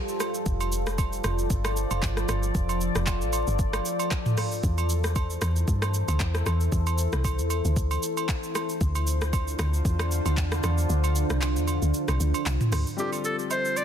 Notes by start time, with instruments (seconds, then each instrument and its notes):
Already playing: ambient pad G3 F4 A4 C5
0.08 shaker
0.20 ambient pad F3 D5, cross-stick, high agogo, shaker
0.34 shaker
0.46 log drum bass F1, kick, shaker
0.60 high agogo, shaker
0.72 shaker
0.87 cross-stick, shaker
0.98 kick, high agogo, shaker
1.13 shaker
1.24 log drum bass F1, cross-stick, high agogo, shaker
1.39 shaker
1.50 log drum bass G1, kick, shaker
1.65 cross-stick, high agogo, shaker
1.77 shaker
1.91 log drum bass F1, high agogo, shaker
2.03 log drum bass G1, kick, clap, shaker
2.17 cross-stick, shaker
2.29 log drum bass G1, cross-stick, high agogo, shaker
2.43 shaker
2.55 log drum bass F1, kick, shaker
2.69 high agogo, shaker
2.81 shaker
2.95 log drum bass F1, cross-stick, shaker
3.07 kick, clap, high agogo, shaker
3.21 log drum bass A1, shaker
3.33 high agogo, shaker
3.47 log drum bass G1, shaker
3.59 kick, shaker
3.73 cross-stick, high agogo, shaker
3.85 shaker
3.99 high agogo, shaker
4.11 kick, clap, shaker
4.26 mid tom, shaker
4.37 ambient pad E4 A4 C5, cross-stick, open hi-hat, high agogo, shaker
4.52 shaker
4.63 log drum bass E2, kick, shaker
4.78 high agogo, shaker
4.90 shaker
5.04 cross-stick, shaker
5.16 kick, high agogo, shaker
5.30 shaker
5.41 log drum bass E2, cross-stick, high agogo, shaker
5.56 shaker
5.68 log drum bass G2, kick, shaker
5.82 cross-stick, high agogo, shaker
5.94 shaker
6.08 log drum bass D2, high agogo, shaker
6.20 log drum bass E2, kick, clap, shaker
6.35 cross-stick, shaker
6.46 log drum bass E2, cross-stick, high agogo, shaker
6.61 shaker
6.72 log drum bass E2, kick, shaker
6.87 high agogo, shaker
6.98 shaker
7.13 log drum bass C2, cross-stick, shaker
7.24 kick, high agogo, shaker
7.39 log drum bass E2, shaker
7.50 high agogo, shaker
7.65 log drum bass D2, shaker
7.76 kick, shaker
7.91 high agogo, shaker
8.03 shaker
8.17 high agogo, shaker
8.29 kick, clap, shaker
8.43 shaker
8.55 cross-stick, high agogo, shaker
8.69 shaker
8.81 log drum bass D2, ambient pad D3 D4 F4, kick, shaker
8.95 high agogo, shaker
9.07 shaker
9.22 cross-stick, shaker
9.33 kick, high agogo, shaker
9.48 shaker
9.59 log drum bass D2, cross-stick, high agogo, shaker
9.74 shaker
9.85 log drum bass E2, kick, shaker
9.99 cross-stick, high agogo, shaker
10.11 shaker
10.26 log drum bass D2, high agogo, shaker
10.37 log drum bass E2, kick, clap, shaker
10.52 cross-stick, shaker
10.63 log drum bass E2, cross-stick, high agogo, shaker
10.78 shaker
10.90 log drum bass D2, shaker
11.04 high agogo, shaker
11.16 shaker
11.30 log drum bass C2, cross-stick, shaker
11.42 clap, high agogo, shaker
11.56 log drum bass E2, shaker
11.67 high agogo, shaker
11.82 log drum bass D2, shaker
11.94 shaker
12.08 log drum bass C2, cross-stick, high agogo, shaker
12.20 log drum bass D2, shaker
12.34 high agogo, shaker
12.46 log drum bass C2, clap, shaker
12.61 mid tom, shaker
12.72 log drum bass D2, cross-stick, open hi-hat, high agogo, shaker
12.87 shaker
12.97 grand piano G3 C4 D4 F4, ambient pad G3 F4 A4 C5, clarinet G4, shaker
13.01 grand piano A4
13.13 high agogo, shaker
13.25 clarinet A4, shaker
13.39 shaker
13.51 clarinet C5, high agogo, low woodblock, shaker
13.65 shaker
13.76 clarinet D5, high agogo, shaker